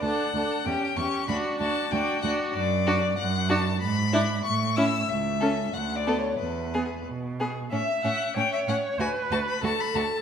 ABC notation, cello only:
X:1
M:2/4
L:1/8
Q:1/4=94
K:D
V:1 name="Cello" clef=bass
D,, D,, E,, E,, | D,, D,, D,, D,, | [K:A] F,,2 F,,2 | G,,2 A,,2 |
C,,2 D,,2 | E,,2 B,,2 | A,, A,, A,, A,, | D,, D,, D,, D,, |]